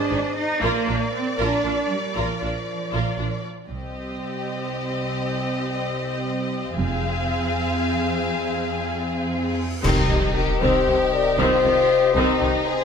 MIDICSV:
0, 0, Header, 1, 14, 480
1, 0, Start_track
1, 0, Key_signature, -3, "minor"
1, 0, Tempo, 512821
1, 575, Time_signature, 6, 3, 24, 8
1, 12018, End_track
2, 0, Start_track
2, 0, Title_t, "Trumpet"
2, 0, Program_c, 0, 56
2, 9213, Note_on_c, 0, 75, 70
2, 12018, Note_off_c, 0, 75, 0
2, 12018, End_track
3, 0, Start_track
3, 0, Title_t, "French horn section"
3, 0, Program_c, 1, 60
3, 0, Note_on_c, 1, 68, 53
3, 0, Note_on_c, 1, 72, 53
3, 433, Note_off_c, 1, 68, 0
3, 433, Note_off_c, 1, 72, 0
3, 592, Note_on_c, 1, 74, 60
3, 593, Note_on_c, 1, 70, 59
3, 3186, Note_off_c, 1, 70, 0
3, 3186, Note_off_c, 1, 74, 0
3, 3454, Note_on_c, 1, 60, 39
3, 3454, Note_on_c, 1, 72, 39
3, 6297, Note_off_c, 1, 60, 0
3, 6297, Note_off_c, 1, 72, 0
3, 6323, Note_on_c, 1, 68, 57
3, 6329, Note_on_c, 1, 60, 57
3, 8931, Note_off_c, 1, 68, 0
3, 8934, Note_off_c, 1, 60, 0
3, 9205, Note_on_c, 1, 67, 78
3, 9656, Note_off_c, 1, 67, 0
3, 9681, Note_on_c, 1, 70, 81
3, 9927, Note_on_c, 1, 72, 78
3, 9928, Note_off_c, 1, 70, 0
3, 10408, Note_on_c, 1, 74, 80
3, 10411, Note_off_c, 1, 72, 0
3, 10651, Note_off_c, 1, 74, 0
3, 10653, Note_on_c, 1, 72, 93
3, 11361, Note_on_c, 1, 67, 86
3, 11374, Note_off_c, 1, 72, 0
3, 11848, Note_off_c, 1, 67, 0
3, 11848, Note_on_c, 1, 72, 92
3, 12018, Note_off_c, 1, 72, 0
3, 12018, End_track
4, 0, Start_track
4, 0, Title_t, "Woodwind section"
4, 0, Program_c, 2, 71
4, 9215, Note_on_c, 2, 75, 72
4, 9219, Note_on_c, 2, 67, 74
4, 9219, Note_on_c, 2, 72, 75
4, 9222, Note_on_c, 2, 60, 74
4, 12018, Note_off_c, 2, 60, 0
4, 12018, Note_off_c, 2, 67, 0
4, 12018, Note_off_c, 2, 72, 0
4, 12018, Note_off_c, 2, 75, 0
4, 12018, End_track
5, 0, Start_track
5, 0, Title_t, "Violin section"
5, 0, Program_c, 3, 48
5, 0, Note_on_c, 3, 75, 59
5, 539, Note_off_c, 3, 75, 0
5, 586, Note_on_c, 3, 74, 63
5, 3235, Note_off_c, 3, 74, 0
5, 3453, Note_on_c, 3, 75, 35
5, 6296, Note_off_c, 3, 75, 0
5, 6338, Note_on_c, 3, 77, 53
5, 9029, Note_off_c, 3, 77, 0
5, 9219, Note_on_c, 3, 63, 74
5, 9663, Note_off_c, 3, 63, 0
5, 9700, Note_on_c, 3, 67, 72
5, 9930, Note_off_c, 3, 67, 0
5, 9941, Note_on_c, 3, 67, 66
5, 10408, Note_off_c, 3, 67, 0
5, 10419, Note_on_c, 3, 70, 75
5, 10652, Note_off_c, 3, 70, 0
5, 10655, Note_on_c, 3, 67, 76
5, 11374, Note_off_c, 3, 67, 0
5, 11374, Note_on_c, 3, 63, 72
5, 11849, Note_on_c, 3, 68, 72
5, 11854, Note_off_c, 3, 63, 0
5, 12018, Note_off_c, 3, 68, 0
5, 12018, End_track
6, 0, Start_track
6, 0, Title_t, "Violin section"
6, 0, Program_c, 4, 48
6, 103, Note_on_c, 4, 63, 54
6, 178, Note_off_c, 4, 63, 0
6, 580, Note_on_c, 4, 70, 57
6, 801, Note_off_c, 4, 70, 0
6, 812, Note_on_c, 4, 62, 49
6, 887, Note_off_c, 4, 62, 0
6, 1290, Note_on_c, 4, 70, 60
6, 1515, Note_off_c, 4, 70, 0
6, 1533, Note_on_c, 4, 62, 45
6, 1608, Note_off_c, 4, 62, 0
6, 2018, Note_on_c, 4, 70, 45
6, 2240, Note_off_c, 4, 70, 0
6, 2269, Note_on_c, 4, 62, 35
6, 2344, Note_off_c, 4, 62, 0
6, 2745, Note_on_c, 4, 70, 43
6, 2963, Note_off_c, 4, 70, 0
6, 2984, Note_on_c, 4, 62, 40
6, 3059, Note_off_c, 4, 62, 0
6, 3455, Note_on_c, 4, 67, 34
6, 6297, Note_off_c, 4, 67, 0
6, 6329, Note_on_c, 4, 68, 48
6, 8987, Note_off_c, 4, 68, 0
6, 9213, Note_on_c, 4, 63, 64
6, 9897, Note_off_c, 4, 63, 0
6, 9929, Note_on_c, 4, 67, 65
6, 10637, Note_off_c, 4, 67, 0
6, 10654, Note_on_c, 4, 65, 70
6, 11365, Note_on_c, 4, 63, 68
6, 11374, Note_off_c, 4, 65, 0
6, 12018, Note_off_c, 4, 63, 0
6, 12018, End_track
7, 0, Start_track
7, 0, Title_t, "Viola section"
7, 0, Program_c, 5, 48
7, 102, Note_on_c, 5, 68, 61
7, 177, Note_off_c, 5, 68, 0
7, 585, Note_on_c, 5, 65, 71
7, 803, Note_off_c, 5, 65, 0
7, 828, Note_on_c, 5, 65, 47
7, 902, Note_off_c, 5, 65, 0
7, 1301, Note_on_c, 5, 65, 57
7, 1521, Note_off_c, 5, 65, 0
7, 1541, Note_on_c, 5, 65, 39
7, 1616, Note_off_c, 5, 65, 0
7, 2021, Note_on_c, 5, 65, 49
7, 2241, Note_off_c, 5, 65, 0
7, 2263, Note_on_c, 5, 65, 36
7, 2338, Note_off_c, 5, 65, 0
7, 2742, Note_on_c, 5, 65, 50
7, 2962, Note_off_c, 5, 65, 0
7, 2982, Note_on_c, 5, 65, 39
7, 3057, Note_off_c, 5, 65, 0
7, 3460, Note_on_c, 5, 60, 35
7, 6300, Note_off_c, 5, 60, 0
7, 6339, Note_on_c, 5, 60, 52
7, 8992, Note_off_c, 5, 60, 0
7, 9211, Note_on_c, 5, 60, 67
7, 9214, Note_on_c, 5, 51, 65
7, 9436, Note_off_c, 5, 60, 0
7, 9437, Note_off_c, 5, 51, 0
7, 9465, Note_on_c, 5, 48, 49
7, 9465, Note_on_c, 5, 51, 48
7, 9540, Note_off_c, 5, 48, 0
7, 9540, Note_off_c, 5, 51, 0
7, 9938, Note_on_c, 5, 60, 60
7, 9943, Note_on_c, 5, 51, 67
7, 10160, Note_off_c, 5, 60, 0
7, 10162, Note_off_c, 5, 51, 0
7, 10182, Note_on_c, 5, 48, 53
7, 10184, Note_on_c, 5, 51, 53
7, 10257, Note_off_c, 5, 48, 0
7, 10259, Note_off_c, 5, 51, 0
7, 10655, Note_on_c, 5, 51, 68
7, 10655, Note_on_c, 5, 60, 79
7, 10878, Note_off_c, 5, 51, 0
7, 10878, Note_off_c, 5, 60, 0
7, 10904, Note_on_c, 5, 51, 52
7, 10909, Note_on_c, 5, 48, 50
7, 10979, Note_off_c, 5, 51, 0
7, 10984, Note_off_c, 5, 48, 0
7, 11385, Note_on_c, 5, 60, 79
7, 11386, Note_on_c, 5, 51, 79
7, 11603, Note_off_c, 5, 60, 0
7, 11604, Note_off_c, 5, 51, 0
7, 11621, Note_on_c, 5, 51, 53
7, 11623, Note_on_c, 5, 48, 55
7, 11696, Note_off_c, 5, 51, 0
7, 11698, Note_off_c, 5, 48, 0
7, 12018, End_track
8, 0, Start_track
8, 0, Title_t, "Trombone section"
8, 0, Program_c, 6, 61
8, 9217, Note_on_c, 6, 48, 67
8, 9220, Note_on_c, 6, 60, 64
8, 12018, Note_off_c, 6, 48, 0
8, 12018, Note_off_c, 6, 60, 0
8, 12018, End_track
9, 0, Start_track
9, 0, Title_t, "Timpani"
9, 0, Program_c, 7, 47
9, 9221, Note_on_c, 7, 48, 85
9, 9900, Note_off_c, 7, 48, 0
9, 12018, End_track
10, 0, Start_track
10, 0, Title_t, "Cello section"
10, 0, Program_c, 8, 48
10, 0, Note_on_c, 8, 62, 75
10, 338, Note_off_c, 8, 62, 0
10, 340, Note_on_c, 8, 63, 84
10, 572, Note_off_c, 8, 63, 0
10, 586, Note_on_c, 8, 58, 83
10, 1060, Note_off_c, 8, 58, 0
10, 1062, Note_on_c, 8, 60, 67
10, 1293, Note_off_c, 8, 60, 0
10, 1297, Note_on_c, 8, 62, 73
10, 1766, Note_off_c, 8, 62, 0
10, 1782, Note_on_c, 8, 55, 62
10, 2017, Note_on_c, 8, 53, 53
10, 2018, Note_off_c, 8, 55, 0
10, 3216, Note_off_c, 8, 53, 0
10, 3458, Note_on_c, 8, 36, 37
10, 6299, Note_off_c, 8, 36, 0
10, 6336, Note_on_c, 8, 41, 55
10, 8991, Note_off_c, 8, 41, 0
10, 9213, Note_on_c, 8, 36, 68
10, 9288, Note_off_c, 8, 36, 0
10, 9452, Note_on_c, 8, 36, 55
10, 9527, Note_off_c, 8, 36, 0
10, 9927, Note_on_c, 8, 36, 67
10, 10002, Note_off_c, 8, 36, 0
10, 10177, Note_on_c, 8, 36, 51
10, 10252, Note_off_c, 8, 36, 0
10, 10647, Note_on_c, 8, 36, 77
10, 10722, Note_off_c, 8, 36, 0
10, 10898, Note_on_c, 8, 36, 55
10, 10973, Note_off_c, 8, 36, 0
10, 11378, Note_on_c, 8, 36, 71
10, 11453, Note_off_c, 8, 36, 0
10, 11613, Note_on_c, 8, 36, 50
10, 11688, Note_off_c, 8, 36, 0
10, 12018, End_track
11, 0, Start_track
11, 0, Title_t, "Double bass section"
11, 0, Program_c, 10, 48
11, 98, Note_on_c, 10, 32, 50
11, 173, Note_off_c, 10, 32, 0
11, 578, Note_on_c, 10, 34, 71
11, 653, Note_off_c, 10, 34, 0
11, 823, Note_on_c, 10, 34, 49
11, 898, Note_off_c, 10, 34, 0
11, 1302, Note_on_c, 10, 34, 65
11, 1377, Note_off_c, 10, 34, 0
11, 1544, Note_on_c, 10, 34, 44
11, 1618, Note_off_c, 10, 34, 0
11, 2022, Note_on_c, 10, 34, 57
11, 2096, Note_off_c, 10, 34, 0
11, 2267, Note_on_c, 10, 34, 37
11, 2342, Note_off_c, 10, 34, 0
11, 2745, Note_on_c, 10, 34, 54
11, 2820, Note_off_c, 10, 34, 0
11, 2978, Note_on_c, 10, 34, 33
11, 3052, Note_off_c, 10, 34, 0
11, 3460, Note_on_c, 10, 36, 34
11, 3904, Note_off_c, 10, 36, 0
11, 6340, Note_on_c, 10, 29, 51
11, 6784, Note_off_c, 10, 29, 0
11, 9214, Note_on_c, 10, 36, 68
11, 9289, Note_off_c, 10, 36, 0
11, 9458, Note_on_c, 10, 36, 52
11, 9533, Note_off_c, 10, 36, 0
11, 9938, Note_on_c, 10, 36, 73
11, 10013, Note_off_c, 10, 36, 0
11, 10174, Note_on_c, 10, 36, 50
11, 10249, Note_off_c, 10, 36, 0
11, 10656, Note_on_c, 10, 36, 69
11, 10731, Note_off_c, 10, 36, 0
11, 10900, Note_on_c, 10, 36, 48
11, 10975, Note_off_c, 10, 36, 0
11, 11376, Note_on_c, 10, 36, 83
11, 11451, Note_off_c, 10, 36, 0
11, 11611, Note_on_c, 10, 36, 52
11, 11686, Note_off_c, 10, 36, 0
11, 12018, End_track
12, 0, Start_track
12, 0, Title_t, "Cymbal swell"
12, 0, Program_c, 11, 119
12, 7774, Note_on_c, 11, 60, 36
12, 9214, Note_off_c, 11, 60, 0
12, 12018, End_track
13, 0, Start_track
13, 0, Title_t, "Sub drop"
13, 0, Program_c, 12, 103
13, 9213, Note_on_c, 12, 60, 71
13, 10653, Note_off_c, 12, 60, 0
13, 12018, End_track
14, 0, Start_track
14, 0, Title_t, "Drums"
14, 9214, Note_on_c, 9, 35, 76
14, 9214, Note_on_c, 9, 49, 71
14, 9308, Note_off_c, 9, 35, 0
14, 9308, Note_off_c, 9, 49, 0
14, 12018, End_track
0, 0, End_of_file